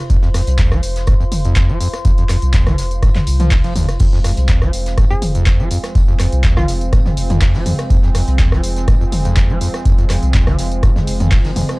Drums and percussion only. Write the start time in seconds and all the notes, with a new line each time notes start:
0.10 kick, closed hi-hat, tambourine
0.22 snare, tambourine
0.34 cross-stick, snare, open hi-hat, tambourine
0.47 closed hi-hat, tambourine
0.58 kick, snare, clap, closed hi-hat, tambourine
0.71 cross-stick, snare, tambourine
0.82 open hi-hat, tambourine
0.96 snare, closed hi-hat, tambourine
1.07 kick, cross-stick, closed hi-hat, tambourine
1.21 tambourine
1.32 open hi-hat, mid tom, tambourine
1.45 closed hi-hat, tambourine
1.55 kick, cross-stick, snare, clap, closed hi-hat, tambourine
1.69 tambourine
1.80 open hi-hat, tambourine
1.94 cross-stick, snare, closed hi-hat, tambourine
2.05 kick, closed hi-hat, tambourine
2.18 closed hi-hat, tambourine
2.29 cross-stick, clap, open hi-hat, tambourine
2.42 closed hi-hat, tambourine
2.53 kick, snare, clap, closed hi-hat, tambourine
2.67 cross-stick, snare, closed hi-hat, mid tom, tambourine
2.78 snare, open hi-hat, tambourine
2.91 closed hi-hat, tambourine
3.03 kick, cross-stick, closed hi-hat, tambourine
3.15 snare, clap, closed hi-hat, mid tom, tambourine
3.27 open hi-hat, tambourine
3.40 closed hi-hat, mid tom, tambourine
3.51 kick, cross-stick, snare, clap, closed hi-hat, open hi-hat, tambourine
3.64 snare, closed hi-hat, tambourine
3.75 open hi-hat, mid tom, tambourine
3.88 cross-stick, snare, closed hi-hat, tambourine
3.99 kick, closed hi-hat, crash, tambourine
4.13 snare, tambourine
4.24 cross-stick, snare, open hi-hat, tambourine
4.37 closed hi-hat, tambourine
4.49 kick, snare, clap, closed hi-hat, tambourine
4.61 cross-stick, snare, tambourine
4.73 open hi-hat, tambourine
4.86 snare, closed hi-hat, tambourine
4.98 kick, cross-stick, closed hi-hat, tambourine
5.11 tambourine
5.22 open hi-hat, mid tom, tambourine
5.35 closed hi-hat, tambourine
5.46 kick, cross-stick, snare, clap, closed hi-hat, tambourine
5.60 tambourine
5.71 open hi-hat, tambourine
5.83 cross-stick, snare, closed hi-hat, tambourine
5.95 kick, closed hi-hat, tambourine
6.08 tambourine
6.19 cross-stick, clap, open hi-hat, tambourine
6.32 closed hi-hat, tambourine
6.43 kick, snare, clap, closed hi-hat, tambourine
6.57 cross-stick, snare, mid tom, tambourine
6.68 snare, open hi-hat, tambourine
6.81 closed hi-hat, tambourine
6.93 kick, cross-stick, closed hi-hat, tambourine
7.06 snare, mid tom, tambourine
7.17 open hi-hat, tambourine
7.30 closed hi-hat, mid tom, tambourine
7.41 kick, cross-stick, snare, clap, closed hi-hat, open hi-hat, tambourine
7.54 snare, tambourine
7.66 open hi-hat, mid tom, tambourine
7.78 cross-stick, snare, closed hi-hat, tambourine
7.90 kick, closed hi-hat, tambourine
8.04 snare, tambourine
8.15 cross-stick, snare, open hi-hat, tambourine
8.28 closed hi-hat, tambourine
8.39 kick, snare, clap, closed hi-hat, tambourine
8.52 cross-stick, snare, tambourine
8.63 open hi-hat, tambourine
8.77 snare, closed hi-hat, tambourine
8.88 kick, cross-stick, closed hi-hat, tambourine
9.01 tambourine
9.12 open hi-hat, mid tom, tambourine
9.25 closed hi-hat, tambourine
9.36 kick, cross-stick, snare, clap, closed hi-hat, tambourine
9.50 tambourine
9.61 open hi-hat, tambourine
9.74 cross-stick, snare, closed hi-hat, tambourine
9.85 kick, closed hi-hat, tambourine
9.98 closed hi-hat, tambourine
10.10 cross-stick, clap, open hi-hat, tambourine
10.23 closed hi-hat, tambourine
10.34 kick, snare, clap, closed hi-hat, tambourine
10.47 cross-stick, snare, mid tom, tambourine
10.59 snare, open hi-hat, tambourine
10.72 closed hi-hat, tambourine
10.83 kick, cross-stick, closed hi-hat, tambourine
10.96 snare, mid tom, tambourine
11.07 open hi-hat, tambourine
11.20 closed hi-hat, mid tom, tambourine
11.31 kick, cross-stick, snare, clap, closed hi-hat, open hi-hat, tambourine
11.45 snare, closed hi-hat, tambourine
11.56 open hi-hat, mid tom, tambourine
11.69 cross-stick, snare, closed hi-hat, tambourine